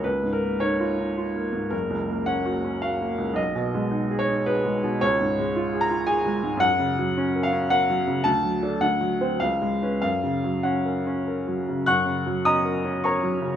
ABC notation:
X:1
M:3/4
L:1/8
Q:1/4=108
K:F#
V:1 name="Upright piano"
B A c3 z | A2 f2 e2 | d3 c B2 | c3 a g2 |
f3 e f2 | =a2 f2 e2 | e2 f3 z | [fc'f']2 [dad']2 [cac']2 |]
V:2 name="Upright piano"
(3C,, G,, A, (3D E D (3E A, G,, | (3F,,, C,, A, (3C F C (3F A, C,, | (3B,,, B,, G, (3D G D (3G G, B,, | (3C,, G,, G, (3E G E (3G G, G,, |
(3F,, C, F, (3C A C (3A F, C, | (3=D,, F, [=D=A] (3D,, F, [=C=c] (3^C,, G, [^CB] | (3F,, C, F, (3C A C (3A F, C, | (3F,, C, F, (3C A C (3A F, C, |]